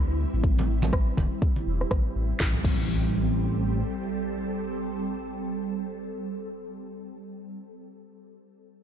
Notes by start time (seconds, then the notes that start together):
Already playing: D2 G3 C4 E4
0.09 shaker
0.34 A1, shaker
0.44 kick
0.59 high conga, low conga
0.82 high conga, low conga
0.93 kick, cross-stick
1.08 shaker
1.17 E1, kick, high conga
1.32 shaker
1.42 kick
1.56 high conga
1.67 E1
1.81 cross-stick, shaker
1.91 A1, kick, cross-stick, high conga
2.06 shaker
2.16 A1
2.30 shaker
2.40 A1 G3 C4 A4, kick, snare, impact
2.65 A1, kick, crash